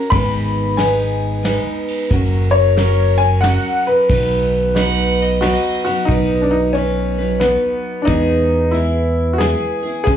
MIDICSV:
0, 0, Header, 1, 7, 480
1, 0, Start_track
1, 0, Key_signature, 5, "major"
1, 0, Tempo, 663717
1, 84, Time_signature, 3, 2, 24, 8
1, 7354, End_track
2, 0, Start_track
2, 0, Title_t, "Fiddle"
2, 0, Program_c, 0, 110
2, 3447, Note_on_c, 0, 78, 94
2, 3771, Note_on_c, 0, 75, 80
2, 3782, Note_off_c, 0, 78, 0
2, 3921, Note_off_c, 0, 75, 0
2, 3929, Note_on_c, 0, 75, 83
2, 4311, Note_off_c, 0, 75, 0
2, 7354, End_track
3, 0, Start_track
3, 0, Title_t, "Grand piano"
3, 0, Program_c, 1, 0
3, 560, Note_on_c, 1, 63, 65
3, 568, Note_on_c, 1, 68, 62
3, 569, Note_on_c, 1, 71, 74
3, 1024, Note_off_c, 1, 63, 0
3, 1028, Note_off_c, 1, 68, 0
3, 1029, Note_off_c, 1, 71, 0
3, 1044, Note_on_c, 1, 63, 63
3, 1047, Note_on_c, 1, 68, 58
3, 1052, Note_on_c, 1, 71, 71
3, 1505, Note_off_c, 1, 63, 0
3, 1507, Note_off_c, 1, 68, 0
3, 1510, Note_off_c, 1, 71, 0
3, 1995, Note_on_c, 1, 61, 68
3, 2001, Note_on_c, 1, 66, 61
3, 2001, Note_on_c, 1, 70, 69
3, 2461, Note_off_c, 1, 61, 0
3, 2464, Note_off_c, 1, 66, 0
3, 2464, Note_off_c, 1, 70, 0
3, 2484, Note_on_c, 1, 61, 65
3, 2487, Note_on_c, 1, 66, 57
3, 2492, Note_on_c, 1, 70, 72
3, 2945, Note_off_c, 1, 61, 0
3, 2947, Note_off_c, 1, 66, 0
3, 2949, Note_off_c, 1, 70, 0
3, 3432, Note_on_c, 1, 63, 84
3, 3433, Note_on_c, 1, 66, 74
3, 3439, Note_on_c, 1, 71, 85
3, 3899, Note_off_c, 1, 63, 0
3, 3900, Note_off_c, 1, 66, 0
3, 3903, Note_off_c, 1, 71, 0
3, 3914, Note_on_c, 1, 63, 77
3, 3924, Note_on_c, 1, 66, 69
3, 3927, Note_on_c, 1, 71, 83
3, 4381, Note_off_c, 1, 63, 0
3, 4385, Note_off_c, 1, 66, 0
3, 4387, Note_off_c, 1, 71, 0
3, 7354, End_track
4, 0, Start_track
4, 0, Title_t, "Upright piano"
4, 0, Program_c, 2, 0
4, 74, Note_on_c, 2, 83, 106
4, 559, Note_on_c, 2, 80, 76
4, 573, Note_off_c, 2, 83, 0
4, 1328, Note_off_c, 2, 80, 0
4, 1816, Note_on_c, 2, 73, 93
4, 2298, Note_on_c, 2, 80, 99
4, 2321, Note_off_c, 2, 73, 0
4, 2459, Note_off_c, 2, 80, 0
4, 2464, Note_on_c, 2, 78, 96
4, 2766, Note_off_c, 2, 78, 0
4, 2798, Note_on_c, 2, 71, 79
4, 3892, Note_off_c, 2, 71, 0
4, 3912, Note_on_c, 2, 66, 82
4, 4217, Note_off_c, 2, 66, 0
4, 4228, Note_on_c, 2, 66, 83
4, 4378, Note_on_c, 2, 63, 87
4, 4401, Note_off_c, 2, 66, 0
4, 4641, Note_on_c, 2, 62, 55
4, 4647, Note_off_c, 2, 63, 0
4, 4707, Note_on_c, 2, 63, 73
4, 4713, Note_off_c, 2, 62, 0
4, 4867, Note_on_c, 2, 61, 73
4, 4881, Note_off_c, 2, 63, 0
4, 5326, Note_off_c, 2, 61, 0
4, 5350, Note_on_c, 2, 59, 74
4, 5800, Note_on_c, 2, 62, 64
4, 5816, Note_off_c, 2, 59, 0
4, 5823, Note_on_c, 2, 63, 93
4, 5839, Note_off_c, 2, 62, 0
4, 6301, Note_on_c, 2, 64, 76
4, 6329, Note_off_c, 2, 63, 0
4, 6750, Note_on_c, 2, 66, 63
4, 6773, Note_off_c, 2, 64, 0
4, 6786, Note_on_c, 2, 68, 82
4, 6795, Note_off_c, 2, 66, 0
4, 7248, Note_off_c, 2, 68, 0
4, 7259, Note_on_c, 2, 68, 105
4, 7334, Note_off_c, 2, 68, 0
4, 7354, End_track
5, 0, Start_track
5, 0, Title_t, "Steel-string acoustic guitar"
5, 0, Program_c, 3, 25
5, 0, Note_on_c, 3, 61, 39
5, 0, Note_on_c, 3, 66, 42
5, 0, Note_on_c, 3, 70, 46
5, 82, Note_on_c, 3, 44, 71
5, 86, Note_off_c, 3, 70, 0
5, 86, Note_on_c, 3, 51, 80
5, 88, Note_on_c, 3, 56, 83
5, 89, Note_off_c, 3, 61, 0
5, 92, Note_off_c, 3, 66, 0
5, 92, Note_on_c, 3, 59, 90
5, 96, Note_on_c, 3, 63, 87
5, 100, Note_on_c, 3, 71, 81
5, 546, Note_off_c, 3, 56, 0
5, 554, Note_off_c, 3, 59, 0
5, 554, Note_on_c, 3, 56, 57
5, 562, Note_off_c, 3, 44, 0
5, 563, Note_on_c, 3, 59, 59
5, 564, Note_off_c, 3, 51, 0
5, 564, Note_off_c, 3, 63, 0
5, 571, Note_off_c, 3, 71, 0
5, 573, Note_on_c, 3, 63, 65
5, 579, Note_on_c, 3, 71, 65
5, 1025, Note_off_c, 3, 56, 0
5, 1032, Note_off_c, 3, 59, 0
5, 1033, Note_on_c, 3, 56, 65
5, 1040, Note_on_c, 3, 59, 60
5, 1041, Note_off_c, 3, 63, 0
5, 1050, Note_on_c, 3, 63, 67
5, 1051, Note_off_c, 3, 71, 0
5, 1058, Note_on_c, 3, 71, 64
5, 1517, Note_off_c, 3, 56, 0
5, 1521, Note_off_c, 3, 59, 0
5, 1521, Note_on_c, 3, 54, 81
5, 1526, Note_off_c, 3, 63, 0
5, 1530, Note_off_c, 3, 71, 0
5, 1531, Note_on_c, 3, 61, 90
5, 1536, Note_on_c, 3, 66, 98
5, 1541, Note_on_c, 3, 70, 90
5, 1995, Note_off_c, 3, 54, 0
5, 1998, Note_on_c, 3, 54, 56
5, 2000, Note_off_c, 3, 61, 0
5, 2009, Note_on_c, 3, 61, 61
5, 2011, Note_off_c, 3, 70, 0
5, 2013, Note_off_c, 3, 66, 0
5, 2016, Note_on_c, 3, 66, 59
5, 2023, Note_on_c, 3, 70, 69
5, 2469, Note_off_c, 3, 54, 0
5, 2472, Note_on_c, 3, 54, 55
5, 2474, Note_off_c, 3, 61, 0
5, 2483, Note_on_c, 3, 61, 67
5, 2488, Note_off_c, 3, 66, 0
5, 2491, Note_on_c, 3, 66, 60
5, 2492, Note_off_c, 3, 70, 0
5, 2960, Note_on_c, 3, 51, 80
5, 2961, Note_on_c, 3, 47, 80
5, 2962, Note_off_c, 3, 61, 0
5, 2963, Note_off_c, 3, 54, 0
5, 2966, Note_on_c, 3, 54, 77
5, 2969, Note_off_c, 3, 66, 0
5, 2970, Note_on_c, 3, 59, 82
5, 2972, Note_on_c, 3, 63, 87
5, 2972, Note_on_c, 3, 71, 82
5, 3430, Note_off_c, 3, 54, 0
5, 3438, Note_on_c, 3, 54, 66
5, 3440, Note_off_c, 3, 51, 0
5, 3441, Note_off_c, 3, 47, 0
5, 3442, Note_off_c, 3, 59, 0
5, 3446, Note_off_c, 3, 63, 0
5, 3446, Note_off_c, 3, 71, 0
5, 3451, Note_on_c, 3, 59, 66
5, 3460, Note_on_c, 3, 63, 66
5, 3466, Note_on_c, 3, 71, 68
5, 3909, Note_off_c, 3, 54, 0
5, 3915, Note_off_c, 3, 59, 0
5, 3918, Note_on_c, 3, 54, 68
5, 3924, Note_off_c, 3, 63, 0
5, 3924, Note_on_c, 3, 59, 71
5, 3932, Note_on_c, 3, 63, 73
5, 3933, Note_off_c, 3, 71, 0
5, 3941, Note_on_c, 3, 71, 74
5, 4230, Note_off_c, 3, 71, 0
5, 4236, Note_off_c, 3, 54, 0
5, 4238, Note_off_c, 3, 63, 0
5, 4238, Note_on_c, 3, 71, 49
5, 4239, Note_off_c, 3, 59, 0
5, 4247, Note_on_c, 3, 63, 47
5, 4252, Note_on_c, 3, 59, 51
5, 4260, Note_on_c, 3, 54, 40
5, 4401, Note_off_c, 3, 71, 0
5, 4403, Note_off_c, 3, 54, 0
5, 4405, Note_on_c, 3, 47, 68
5, 4406, Note_off_c, 3, 63, 0
5, 4408, Note_off_c, 3, 59, 0
5, 4409, Note_on_c, 3, 51, 71
5, 4412, Note_on_c, 3, 54, 76
5, 4416, Note_on_c, 3, 59, 83
5, 4418, Note_on_c, 3, 63, 77
5, 4421, Note_on_c, 3, 71, 80
5, 4870, Note_off_c, 3, 54, 0
5, 4879, Note_on_c, 3, 54, 52
5, 4883, Note_off_c, 3, 47, 0
5, 4885, Note_off_c, 3, 59, 0
5, 4886, Note_off_c, 3, 51, 0
5, 4887, Note_off_c, 3, 63, 0
5, 4888, Note_on_c, 3, 59, 54
5, 4896, Note_on_c, 3, 63, 57
5, 4901, Note_off_c, 3, 71, 0
5, 4904, Note_on_c, 3, 71, 61
5, 5185, Note_off_c, 3, 71, 0
5, 5193, Note_on_c, 3, 71, 48
5, 5197, Note_off_c, 3, 54, 0
5, 5200, Note_off_c, 3, 63, 0
5, 5202, Note_off_c, 3, 59, 0
5, 5209, Note_on_c, 3, 63, 45
5, 5213, Note_on_c, 3, 59, 39
5, 5222, Note_on_c, 3, 54, 37
5, 5344, Note_off_c, 3, 54, 0
5, 5353, Note_on_c, 3, 54, 54
5, 5358, Note_off_c, 3, 59, 0
5, 5359, Note_off_c, 3, 71, 0
5, 5367, Note_off_c, 3, 63, 0
5, 5367, Note_on_c, 3, 59, 58
5, 5375, Note_on_c, 3, 63, 59
5, 5377, Note_on_c, 3, 71, 64
5, 5836, Note_off_c, 3, 54, 0
5, 5836, Note_off_c, 3, 59, 0
5, 5836, Note_on_c, 3, 52, 75
5, 5839, Note_on_c, 3, 56, 70
5, 5845, Note_on_c, 3, 59, 77
5, 5849, Note_off_c, 3, 63, 0
5, 5850, Note_off_c, 3, 71, 0
5, 5855, Note_on_c, 3, 68, 90
5, 6308, Note_off_c, 3, 56, 0
5, 6311, Note_off_c, 3, 59, 0
5, 6311, Note_on_c, 3, 56, 57
5, 6319, Note_on_c, 3, 59, 55
5, 6329, Note_on_c, 3, 64, 61
5, 6333, Note_off_c, 3, 68, 0
5, 6336, Note_on_c, 3, 68, 61
5, 6787, Note_off_c, 3, 56, 0
5, 6796, Note_on_c, 3, 56, 60
5, 6799, Note_off_c, 3, 59, 0
5, 6807, Note_off_c, 3, 64, 0
5, 6808, Note_on_c, 3, 59, 60
5, 6811, Note_off_c, 3, 68, 0
5, 6815, Note_on_c, 3, 64, 60
5, 6821, Note_on_c, 3, 68, 60
5, 7098, Note_off_c, 3, 68, 0
5, 7107, Note_on_c, 3, 68, 45
5, 7115, Note_off_c, 3, 64, 0
5, 7118, Note_off_c, 3, 56, 0
5, 7123, Note_on_c, 3, 64, 42
5, 7124, Note_off_c, 3, 59, 0
5, 7136, Note_on_c, 3, 59, 38
5, 7274, Note_on_c, 3, 49, 78
5, 7277, Note_off_c, 3, 52, 0
5, 7278, Note_off_c, 3, 68, 0
5, 7280, Note_on_c, 3, 52, 75
5, 7284, Note_off_c, 3, 59, 0
5, 7284, Note_on_c, 3, 56, 78
5, 7287, Note_off_c, 3, 64, 0
5, 7287, Note_on_c, 3, 61, 73
5, 7290, Note_on_c, 3, 68, 79
5, 7354, Note_off_c, 3, 49, 0
5, 7354, Note_off_c, 3, 52, 0
5, 7354, Note_off_c, 3, 56, 0
5, 7354, Note_off_c, 3, 61, 0
5, 7354, Note_off_c, 3, 68, 0
5, 7354, End_track
6, 0, Start_track
6, 0, Title_t, "Fingered electric bass"
6, 0, Program_c, 4, 33
6, 84, Note_on_c, 4, 32, 85
6, 1141, Note_off_c, 4, 32, 0
6, 1522, Note_on_c, 4, 30, 88
6, 2580, Note_off_c, 4, 30, 0
6, 2960, Note_on_c, 4, 35, 94
6, 4019, Note_off_c, 4, 35, 0
6, 4401, Note_on_c, 4, 35, 82
6, 5461, Note_off_c, 4, 35, 0
6, 5836, Note_on_c, 4, 40, 88
6, 6899, Note_off_c, 4, 40, 0
6, 7282, Note_on_c, 4, 37, 85
6, 7354, Note_off_c, 4, 37, 0
6, 7354, End_track
7, 0, Start_track
7, 0, Title_t, "Drums"
7, 86, Note_on_c, 9, 36, 111
7, 88, Note_on_c, 9, 51, 55
7, 159, Note_off_c, 9, 36, 0
7, 161, Note_off_c, 9, 51, 0
7, 567, Note_on_c, 9, 38, 77
7, 567, Note_on_c, 9, 51, 53
7, 640, Note_off_c, 9, 38, 0
7, 640, Note_off_c, 9, 51, 0
7, 1047, Note_on_c, 9, 38, 86
7, 1047, Note_on_c, 9, 51, 62
7, 1120, Note_off_c, 9, 38, 0
7, 1120, Note_off_c, 9, 51, 0
7, 1362, Note_on_c, 9, 51, 64
7, 1434, Note_off_c, 9, 51, 0
7, 1525, Note_on_c, 9, 36, 108
7, 1526, Note_on_c, 9, 51, 61
7, 1597, Note_off_c, 9, 36, 0
7, 1598, Note_off_c, 9, 51, 0
7, 2007, Note_on_c, 9, 38, 76
7, 2007, Note_on_c, 9, 51, 58
7, 2079, Note_off_c, 9, 38, 0
7, 2079, Note_off_c, 9, 51, 0
7, 2485, Note_on_c, 9, 38, 84
7, 2485, Note_on_c, 9, 51, 66
7, 2557, Note_off_c, 9, 38, 0
7, 2557, Note_off_c, 9, 51, 0
7, 2962, Note_on_c, 9, 36, 106
7, 2963, Note_on_c, 9, 51, 61
7, 3035, Note_off_c, 9, 36, 0
7, 3035, Note_off_c, 9, 51, 0
7, 3443, Note_on_c, 9, 38, 78
7, 3443, Note_on_c, 9, 51, 52
7, 3515, Note_off_c, 9, 38, 0
7, 3515, Note_off_c, 9, 51, 0
7, 3921, Note_on_c, 9, 38, 85
7, 3921, Note_on_c, 9, 51, 59
7, 3994, Note_off_c, 9, 38, 0
7, 3994, Note_off_c, 9, 51, 0
7, 4239, Note_on_c, 9, 51, 54
7, 4311, Note_off_c, 9, 51, 0
7, 4399, Note_on_c, 9, 42, 54
7, 4401, Note_on_c, 9, 36, 100
7, 4471, Note_off_c, 9, 42, 0
7, 4473, Note_off_c, 9, 36, 0
7, 4878, Note_on_c, 9, 42, 54
7, 4951, Note_off_c, 9, 42, 0
7, 5358, Note_on_c, 9, 38, 81
7, 5358, Note_on_c, 9, 42, 59
7, 5431, Note_off_c, 9, 38, 0
7, 5431, Note_off_c, 9, 42, 0
7, 5837, Note_on_c, 9, 42, 61
7, 5840, Note_on_c, 9, 36, 100
7, 5909, Note_off_c, 9, 42, 0
7, 5913, Note_off_c, 9, 36, 0
7, 6323, Note_on_c, 9, 42, 52
7, 6395, Note_off_c, 9, 42, 0
7, 6801, Note_on_c, 9, 38, 87
7, 6801, Note_on_c, 9, 42, 60
7, 6874, Note_off_c, 9, 38, 0
7, 6874, Note_off_c, 9, 42, 0
7, 7281, Note_on_c, 9, 42, 54
7, 7283, Note_on_c, 9, 36, 107
7, 7354, Note_off_c, 9, 36, 0
7, 7354, Note_off_c, 9, 42, 0
7, 7354, End_track
0, 0, End_of_file